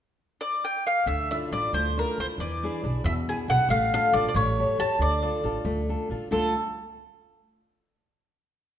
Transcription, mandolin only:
0.41 D5
0.65 G5
0.87 F5
1.07 E5
1.31 E5
1.53 D5
1.74 C5
1.99 A#4
2.20 C5
2.40 D5
3.06 E5
3.29 G#5
3.50 F#5
3.70 F5
3.94 F5
4.13 D5
4.29 D5
4.36 C#5
4.80 A5
5.02 D5
6.32 A4

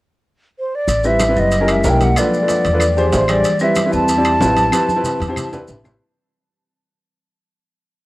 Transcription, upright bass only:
0.88 A1
1.36 F#1
1.85 B1
2.65 E2
3.13 A1
3.93 E2
4.40 A1
5.20 E2
5.69 A1

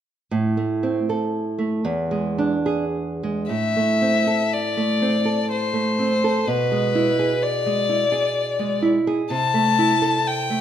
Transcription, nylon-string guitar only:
0.31 A2
0.57 A3
0.83 C4
1.09 A4
1.59 A3
1.85 E2
2.11 G#3
2.38 D4
2.66 G#4
3.23 G#3
3.49 A2
3.77 A3
4.02 C4
4.27 A4
4.77 A3
5.02 C4
5.25 A4
5.74 A3
5.99 C4
6.24 A4
6.47 B2
6.72 G#3
6.95 E4
7.19 G#4
7.66 G#3
7.89 E4
8.12 G#4
8.59 G#3
8.82 E4
9.07 G#4
9.30 C3
9.54 A3
9.79 E4
10.02 A4
10.50 A3

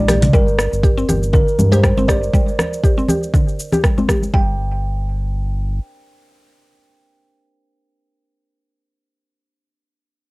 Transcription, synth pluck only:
0.09 G4
0.23 D3
0.34 G3
0.84 G4
0.97 C4
1.09 G4
1.34 D3
1.72 G4
1.84 G3
1.98 C4
2.09 G4
2.34 G3
2.84 G4
2.98 C4
3.09 G4
3.34 D3
3.73 G4
3.84 G3
3.98 C4
4.09 G4
4.34 G3

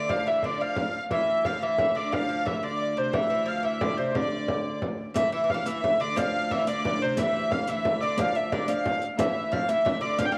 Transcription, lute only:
Already playing: D3
0.09 F3
0.27 E3
0.44 D3
0.61 F3
1.11 E3
1.46 F3
1.59 E3 F3
1.79 E3
1.95 D3
2.12 F3
2.29 F3
2.45 E3
2.63 D3
2.97 C3
3.13 E3
3.30 E3
3.46 F3
3.63 E3
3.81 D3
3.98 C3
4.15 D3
5.14 E3
5.32 E3
5.44 E3
5.54 E3
5.66 E3
5.84 E3
6.00 D3
6.16 F3
6.51 E3
6.68 D3
6.85 D3
7.02 C3
7.18 E3
7.68 E3
8.03 D3
8.19 F3
8.52 D3
8.69 F3
9.20 E3
9.52 F3
9.68 E3
9.85 E3
10.01 D3
10.18 F3
10.32 F3

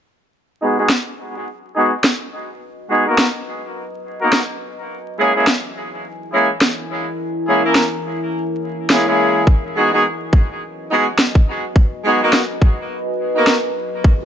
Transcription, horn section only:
0.62 G#3 B3 D#4 F#4 G#4
0.78 G#3 B3 D#4 F#4 G#4
1.75 G#3 B3 D#4 F#4 G#4
2.90 G#3 B3 D#4 F#4 G#4
3.07 A#3 B3 D#4 F#4 A#4
4.21 A#3 B3 D#4 F#4 A#4
5.19 G#3 A#3 C#4 E4 G#4
5.36 G#3 A#3 C#4 E4 G#4
6.33 G#3 A#3 C#4 E4 G#4
7.47 G#3 A#3 C#4 E4 G#4
7.64 A#3 C#4 E4 A#4
8.90 G#3 A#3 C#4 E4 G#4
9.07 G#3 A#3 C#4 E4 G#4
9.76 G#3 B3 D#4 F#4 G#4
9.93 G#3 B3 D#4 F#4 G#4
10.90 G#3 B3 D#4 F#4 G#4
12.05 G#3 B3 D#4 F#4 G#4
12.21 A#3 B3 D#4 F#4 A#4
13.36 A#3 B3 D#4 F#4 A#4

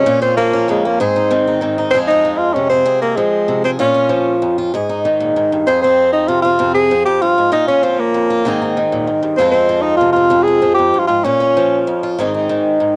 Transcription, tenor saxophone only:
Already playing: C#4
0.22 C4
0.37 A#3
0.70 G#3
0.86 A#3
1.00 C4
1.91 C4
2.07 D#4
2.38 F4
2.54 C#4
2.70 C4
3.02 A#3
3.17 G#3
3.65 C4
3.80 C#4
5.67 C4
5.82 C4
6.13 D#4
6.28 F4
6.42 F4
6.74 G#4
7.05 G4
7.22 F4
7.53 D#4
7.68 C#4
7.84 C4
8.00 A#3
9.37 C4
9.51 C4
9.82 D#4
9.97 F4
10.13 F4
10.43 G#4
10.75 G4
10.99 F4
11.07 F4
11.24 C#4

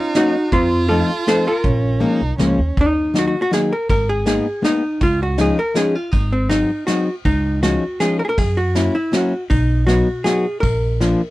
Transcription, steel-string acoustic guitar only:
0.15 F#3 A#3 C#4 D#4
0.90 F3 A3 C4 D#4
1.27 F3 A3 C4 D#4
2.00 F3 G#3 A#3 C#4
2.39 F3 G#3 A#3 C#4
3.14 D#3 F#3 A#3 D#4
3.51 D#3 F#3 A#3 D#4
4.26 G#3 A#3 B3 D#4
4.62 G#3 A#3 B3 D#4
5.38 F3 G#3 C#4 D#4
5.74 F3 G#3 C#4 D#4
6.49 F#3 G#3 C4 D#4
6.88 F#3 G#3 C4 D#4
7.63 F3 G#3 C#4 D#4
8.00 F3 G#3 C#4 D#4
8.75 F#3 A#3 C#4 E4
9.12 F#3 A#3 C#4 E4
9.87 F#3 B3 D#4 F#4
10.24 F#3 B3 D#4 F#4
11.01 F3 A#3 D4 F4

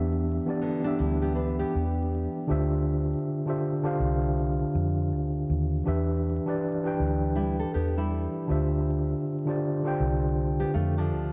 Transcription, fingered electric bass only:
Already playing: E2
1.00 D2
1.75 E2
2.50 D2
4.00 C2
4.75 F2
5.12 D2
5.50 D#2
5.87 E2
7.00 D2
7.75 E2
8.50 D2
10.00 C2
10.75 F2
11.12 D2

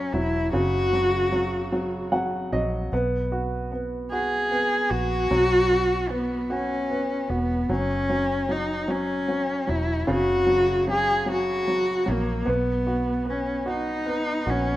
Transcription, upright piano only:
Already playing: F#3
0.14 F#3
0.53 C#3
0.93 F#3
1.32 F#3
1.72 F#3
2.12 F#3 F#5
2.52 F#3 D#5
2.93 B3
3.32 F#4
3.72 B3
4.12 F#4
4.51 B3
4.91 F#4
5.31 F#3
5.71 F#4
6.10 B3
6.50 F#4
6.90 B3
7.30 F#4
7.70 F#3
8.10 F#3
8.49 F#3
8.88 F#3
9.28 F#3
9.67 F#3
10.07 C#3
10.47 F#3
10.87 F#3
11.26 F#3
11.68 F#3
12.06 F#3
12.46 B3
12.87 F#4
13.25 B3
13.66 F#4
14.06 B3
14.46 F#4

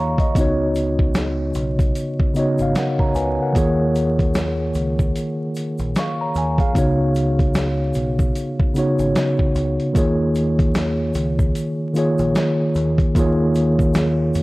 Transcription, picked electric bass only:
Already playing: D#2
0.35 C#2
1.55 B1
2.60 G#1
3.15 C#2
3.55 D#2
4.75 C#2
5.79 A#1
6.35 D#2
6.75 C#2
7.95 B1
8.99 G#1
9.55 C#2
9.95 D#2
11.15 C#2
12.19 A#1
12.76 D#2
13.15 D#2
14.35 F2

